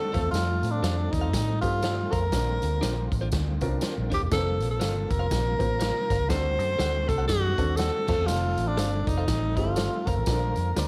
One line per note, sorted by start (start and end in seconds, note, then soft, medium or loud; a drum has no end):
0.00 0.13 D3 medium
0.00 2.29 A3 medium
0.00 0.12 C4 medium
0.00 4.28 C4 medium
0.00 0.14 D4 medium
0.00 0.13 F#4 medium
0.00 0.14 F#4 medium
0.00 0.12 A4 loud
0.00 0.30 A4 loud
0.12 0.22 F2 loud
0.12 0.90 A3 medium
0.12 0.89 C4 medium
0.12 0.89 F4 medium
0.12 0.19 A4 medium
0.12 0.90 A4 medium
0.12 2.31 A4 medium
0.12 0.20 C5 medium
0.12 0.20 F5 medium
0.12 kick medium
0.12 snare soft
0.12 closed hi-hat medium
0.12 tambourine soft
0.17 2.32 F3 medium
0.23 0.32 E2 loud
0.31 0.59 F2 loud
0.31 0.73 F4 loud
0.31 closed hi-hat medium
0.31 tambourine medium
0.35 snare loud
0.62 0.80 A2 medium
0.62 closed hi-hat medium
0.62 tambourine medium
0.71 1.13 D4 medium
0.82 1.09 F2 medium
0.82 0.95 A4 medium
0.82 0.95 C5 medium
0.82 0.95 F5 medium
0.82 snare loud
0.82 closed hi-hat medium
0.82 tambourine loud
1.12 1.34 D#2 medium
1.12 1.61 D#4 loud
1.12 kick loud
1.12 closed hi-hat medium
1.12 tambourine medium
1.21 1.29 A4 medium
1.21 1.29 C5 soft
1.21 1.28 F5 medium
1.33 1.59 A2 medium
1.33 kick loud
1.33 snare loud
1.33 closed hi-hat medium
1.33 tambourine medium
1.61 2.05 G2 medium
1.61 2.17 A3 medium
1.61 2.18 C4 medium
1.61 2.13 F4 loud
1.61 2.18 F4 medium
1.61 2.18 G4 medium
1.61 kick medium
1.61 closed hi-hat medium
1.61 tambourine medium
1.82 1.94 A4 medium
1.82 1.95 C5 medium
1.82 1.95 F5 medium
1.82 snare loud
1.82 closed hi-hat loud
1.82 tambourine medium
2.11 2.30 F2 loud
2.11 2.18 A4 medium
2.11 3.11 A#4 loud
2.11 2.19 C5 medium
2.11 2.19 F5 medium
2.11 kick medium
2.11 closed hi-hat medium
2.11 tambourine medium
2.32 2.58 A#1 loud
2.32 4.30 D3 medium
2.32 6.26 A#3 medium
2.32 3.12 C4 medium
2.32 3.12 D4 medium
2.32 6.26 F4 medium
2.32 3.12 F4 medium
2.32 3.12 A#4 medium
2.32 kick loud
2.32 snare loud
2.32 closed hi-hat medium
2.32 tambourine loud
2.62 2.80 D2 loud
2.62 closed hi-hat medium
2.62 tambourine medium
2.81 3.08 A#1 medium
2.81 2.93 D4 medium
2.81 2.94 F4 medium
2.81 2.94 C5 medium
2.81 snare medium
2.81 closed hi-hat medium
2.81 tambourine loud
3.12 3.29 A1 medium
3.12 kick medium
3.12 closed hi-hat medium
3.12 tambourine medium
3.21 3.28 D4 soft
3.21 3.28 F4 medium
3.21 3.28 C5 medium
3.32 3.58 D2 medium
3.32 kick loud
3.32 snare loud
3.32 closed hi-hat loud
3.32 tambourine loud
3.61 3.79 C2 medium
3.61 4.17 C4 medium
3.61 3.67 C#4 medium
3.61 4.17 F4 medium
3.61 4.17 A#4 loud
3.61 kick medium
3.61 closed hi-hat medium
3.61 tambourine medium
3.68 4.20 D4 medium
3.81 3.93 D4 medium
3.81 3.93 F4 medium
3.81 3.94 C5 loud
3.81 snare loud
3.81 closed hi-hat medium
3.81 tambourine medium
3.98 4.10 A#1 medium
4.10 4.20 D#1 medium
4.10 4.17 D4 medium
4.10 4.17 F4 medium
4.10 4.22 G4 medium
4.10 4.18 C5 medium
4.10 kick medium
4.10 snare soft
4.10 closed hi-hat medium
4.10 tambourine soft
4.22 4.30 E1 medium
4.31 4.62 F1 loud
4.31 6.28 C3 medium
4.31 6.28 F3 medium
4.31 5.11 A#3 medium
4.31 5.11 C4 medium
4.31 5.11 F4 medium
4.31 4.39 A4 medium
4.31 4.69 A4 loud
4.31 kick loud
4.31 snare loud
4.31 closed hi-hat medium
4.31 tambourine medium
4.38 5.14 C5 medium
4.60 4.81 A#1 medium
4.60 closed hi-hat medium
4.60 tambourine medium
4.71 5.12 A4 loud
4.80 5.07 G1 medium
4.80 4.92 A#4 medium
4.80 4.92 C5 medium
4.80 4.93 F5 medium
4.80 snare medium
4.80 closed hi-hat medium
4.80 tambourine loud
5.10 5.28 F1 medium
5.10 6.31 A#4 loud
5.10 kick loud
5.10 closed hi-hat medium
5.10 tambourine medium
5.19 5.27 A#4 medium
5.19 5.26 C5 medium
5.19 5.26 F5 medium
5.31 5.56 A#1 loud
5.31 kick medium
5.31 snare loud
5.31 closed hi-hat medium
5.31 tambourine loud
5.59 5.90 A1 medium
5.59 6.14 A#3 medium
5.59 6.15 C4 medium
5.59 6.15 F4 medium
5.59 6.14 C5 medium
5.59 kick medium
5.59 closed hi-hat medium
5.59 tambourine soft
5.80 5.91 A#4 medium
5.80 5.92 C5 medium
5.80 5.92 F5 loud
5.80 snare loud
5.80 closed hi-hat medium
5.80 tambourine loud
6.10 6.18 G1 medium
6.10 6.16 A#4 medium
6.10 6.16 C5 medium
6.10 6.17 F5 medium
6.10 kick medium
6.10 snare soft
6.10 closed hi-hat medium
6.10 tambourine medium
6.19 6.28 C#2 medium
6.29 6.59 D2 loud
6.29 8.07 D3 medium
6.29 10.23 A3 medium
6.29 7.09 C4 medium
6.29 10.88 C4 medium
6.29 7.09 D4 medium
6.29 7.09 F#4 medium
6.29 8.07 F#4 medium
6.29 7.09 A4 medium
6.29 7.10 C5 loud
6.29 kick loud
6.29 snare loud
6.29 closed hi-hat medium
6.29 tambourine loud
6.59 6.76 F#2 loud
6.59 closed hi-hat medium
6.59 tambourine medium
6.79 7.05 D2 medium
6.79 6.90 A4 medium
6.79 6.91 C5 loud
6.79 6.91 F#5 loud
6.79 snare loud
6.79 closed hi-hat medium
6.79 tambourine medium
7.09 7.26 C2 medium
7.09 7.27 A4 loud
7.09 kick loud
7.09 closed hi-hat medium
7.09 tambourine medium
7.18 7.25 A4 medium
7.18 7.25 C5 medium
7.18 7.25 F#5 medium
7.27 7.55 F#2 loud
7.27 7.78 F#4 loud
7.27 kick loud
7.27 snare loud
7.27 closed hi-hat loud
7.27 tambourine loud
7.58 7.89 D#2 medium
7.58 8.07 C4 medium
7.58 8.08 D4 medium
7.58 8.08 F#4 medium
7.58 8.07 A4 medium
7.58 kick medium
7.58 closed hi-hat medium
7.58 tambourine soft
7.76 8.28 A4 loud
7.76 7.90 A4 medium
7.76 7.90 C5 medium
7.76 7.90 F#5 medium
7.76 snare loud
7.76 closed hi-hat medium
7.76 tambourine medium
8.07 8.17 F2 loud
8.07 10.25 F3 medium
8.07 8.84 A3 medium
8.07 8.84 C4 medium
8.07 8.84 F4 medium
8.07 8.14 A4 medium
8.07 10.25 A4 medium
8.07 8.84 A4 medium
8.07 8.14 C5 medium
8.07 8.15 F5 medium
8.07 kick loud
8.07 snare soft
8.07 tambourine soft
8.07 crash medium
8.18 8.27 E2 loud
8.26 8.55 F1 loud
8.26 8.69 F4 loud
8.26 snare loud
8.26 closed hi-hat medium
8.26 tambourine loud
8.57 8.76 A1 loud
8.57 closed hi-hat medium
8.57 tambourine medium
8.68 9.09 D4 loud
8.77 9.04 G1 loud
8.77 8.89 A4 medium
8.77 8.90 C5 loud
8.77 8.90 F5 medium
8.77 snare loud
8.77 closed hi-hat medium
8.77 tambourine medium
9.07 9.25 F1 loud
9.07 9.58 D#4 medium
9.07 kick loud
9.07 closed hi-hat medium
9.07 tambourine medium
9.18 9.24 A4 medium
9.18 9.24 C5 medium
9.18 9.24 F5 medium
9.28 9.54 A1 medium
9.28 kick loud
9.28 snare loud
9.28 closed hi-hat loud
9.28 tambourine medium
9.57 9.87 G1 medium
9.57 9.62 G#3 medium
9.57 10.12 C4 medium
9.57 10.08 F4 loud
9.57 10.12 F4 medium
9.57 10.12 G4 medium
9.57 kick medium
9.57 closed hi-hat medium
9.57 tambourine medium
9.64 10.15 A3 medium
9.76 9.88 A4 medium
9.76 9.89 C5 medium
9.76 9.89 F5 loud
9.76 snare loud
9.76 closed hi-hat loud
9.76 tambourine loud
10.07 10.16 F1 medium
10.07 10.13 A4 medium
10.07 10.88 A#4 medium
10.07 10.13 C5 medium
10.07 10.14 F5 medium
10.07 kick loud
10.07 closed hi-hat medium
10.07 tambourine soft
10.17 10.26 A1 medium
10.26 10.53 A#1 loud
10.26 10.88 D3 medium
10.26 10.88 A#3 medium
10.26 10.88 C4 medium
10.26 10.88 D4 medium
10.26 10.88 F4 medium
10.26 10.35 A4 medium
10.26 kick loud
10.26 snare loud
10.26 closed hi-hat medium
10.26 tambourine medium
10.34 10.88 A#4 medium
10.56 10.74 F2 medium
10.56 closed hi-hat medium
10.56 tambourine medium
10.76 10.88 D2 loud
10.76 10.88 F4 medium
10.76 10.88 C5 medium
10.76 10.88 D5 medium
10.76 snare medium
10.76 closed hi-hat medium
10.76 tambourine loud